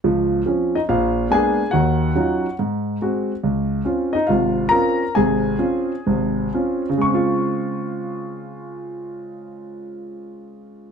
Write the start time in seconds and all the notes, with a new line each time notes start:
0.04 C#2 F3
0.46 F3 C4 C#4
0.75 D#4 D#5
0.89 A#1 F4 F5
1.30 G#3 A#3 B3 D4 G#5
1.34 G#4
1.71 D#2 D#3 F#4 F#5
2.15 F#3 C#4 D#4 F4
2.59 G#2
3.02 G#3 C4 F#4
3.44 C#2
3.85 C4 C#4 F4
4.13 D#4 D#5
4.27 G#1 C3 F4 F5
4.69 C4 C#4 F4 A#4 A#5
5.15 G#1 C3 G#4 G#5
5.59 C4 C#4 F4
6.07 G#1 C3
6.54 C4 C#4 F4
6.90 C#3
6.98 G#3 C#6
7.06 C4
7.14 F4